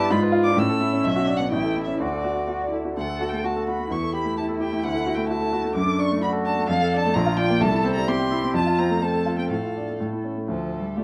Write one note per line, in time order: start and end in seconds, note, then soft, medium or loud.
0.00 0.14 G2 loud
0.00 0.14 D4 medium
0.00 0.14 E4 loud
0.00 0.12 G4 loud
0.00 0.13 B4 medium
0.00 0.14 D5 loud
0.00 0.11 A5 loud
0.10 0.56 G#2 loud
0.10 0.58 F4 loud
0.10 0.19 B5 loud
0.22 0.41 B4 medium
0.32 0.52 F4 medium
0.43 0.57 D4 medium
0.43 0.59 D6 loud
0.56 1.02 A2 medium
0.56 1.51 C#4 loud
0.56 1.06 E6 loud
0.69 0.88 A4 medium
0.80 0.99 E4 medium
0.93 1.04 C#4 medium
1.04 1.50 B1 medium
1.04 1.38 E5 loud
1.16 1.35 F#4 medium
1.27 1.46 D4 medium
1.37 1.51 B3 medium
1.37 1.51 F#5 loud
1.51 1.99 A1 medium
1.51 2.02 E4 loud
1.51 1.83 G5 loud
1.64 1.83 A4 medium
1.76 1.96 E4 medium
1.84 2.00 C#4 medium
1.84 2.00 E5 medium
2.00 2.94 D2 medium
2.00 2.44 F#4 medium
2.00 2.71 D5 medium
2.12 2.32 A4 medium
2.24 2.44 F#4 medium
2.37 2.56 D4 medium
2.48 2.68 F#4 medium
2.48 2.71 F#4 medium
2.61 2.80 D5 medium
2.71 2.96 E4 medium
2.71 2.92 A4 medium
2.85 2.97 F#4 medium
2.97 3.88 D2 medium
2.97 3.45 A4 loud
2.97 3.30 F#5 loud
3.09 3.28 A4 medium
3.21 3.40 F#4 medium
3.29 3.51 A3 medium
3.29 3.47 G5 medium
3.44 3.90 F#4 medium
3.44 3.63 F#4 medium
3.44 3.68 A5 medium
3.56 3.75 A4 medium
3.68 3.86 F#4 medium
3.68 3.93 B5 medium
3.79 3.91 A3 medium
3.90 4.81 E2 medium
3.90 5.72 E4 loud
3.90 4.14 C#6 loud
4.03 4.21 A4 medium
4.13 4.32 G4 medium
4.13 4.37 B5 loud
4.25 4.44 A3 medium
4.37 4.56 G4 medium
4.37 4.45 A5 medium
4.49 4.67 A4 medium
4.60 4.79 G4 medium
4.60 4.85 G5 loud
4.72 4.84 A3 medium
4.84 5.74 D2 medium
4.84 5.16 F#5 loud
4.95 5.13 A4 medium
5.06 5.25 F#4 medium
5.15 5.36 A3 medium
5.15 5.29 G5 loud
5.29 5.49 F#4 medium
5.29 5.75 A5 loud
5.41 5.60 A4 medium
5.53 5.71 F#4 medium
5.64 5.76 A3 medium
5.75 6.65 F#2 medium
5.75 6.24 D4 medium
5.75 6.01 D6 loud
5.86 6.05 A4 medium
5.98 6.17 D4 medium
5.98 6.22 C#6 loud
6.11 6.30 A3 medium
6.22 6.41 D4 medium
6.22 6.69 F#4 loud
6.22 6.30 B5 loud
6.32 6.52 A4 medium
6.46 6.64 D4 medium
6.46 6.68 A5 loud
6.58 6.69 A3 medium
6.68 7.13 F2 medium
6.68 7.16 A4 loud
6.68 6.98 F5 loud
6.82 7.00 A4 medium
6.94 7.11 D4 medium
6.99 7.15 A5 loud
7.06 7.16 A3 medium
7.14 7.60 A#1 loud
7.14 7.61 F4 loud
7.14 7.38 A#5 loud
7.26 7.45 F4 medium
7.37 7.56 D4 medium
7.37 7.63 G5 loud
7.50 7.61 A#3 medium
7.61 8.51 C2 medium
7.61 8.10 A4 loud
7.61 7.92 A5 loud
7.72 7.91 E4 medium
7.84 8.03 C4 medium
7.93 8.10 A#5 loud
7.97 8.15 G3 medium
8.08 8.26 C4 medium
8.08 8.56 G4 loud
8.08 8.55 C6 loud
8.19 8.38 G4 medium
8.31 8.50 E4 medium
8.44 8.55 C4 medium
8.54 9.47 F2 medium
8.54 9.00 F4 loud
8.54 8.80 A5 loud
8.66 8.85 F4 medium
8.78 8.97 C4 medium
8.78 9.04 A#5 loud
8.90 9.09 A3 medium
9.00 9.20 C4 medium
9.00 9.49 A4 medium
9.00 9.38 A5 loud
9.13 9.33 A4 medium
9.26 9.46 F4 medium
9.37 9.50 C4 medium
9.37 9.50 G5 medium
9.50 9.98 A2 medium
9.50 10.23 A4 medium
9.50 9.99 F5 medium
9.63 9.82 F4 soft
9.77 9.96 D4 medium
9.89 10.00 A3 soft
10.00 10.47 A2 medium
10.13 10.32 E4 medium
10.24 10.44 C#4 soft
10.37 10.49 A3 soft
10.47 10.94 D2 medium
10.47 10.81 F3 medium
10.47 10.97 A4 medium
10.80 10.97 G3 medium
10.95 11.04 A3 medium
10.95 11.04 A3 soft
10.95 11.04 D4 soft
10.95 11.04 F4 soft
10.95 11.04 G4 medium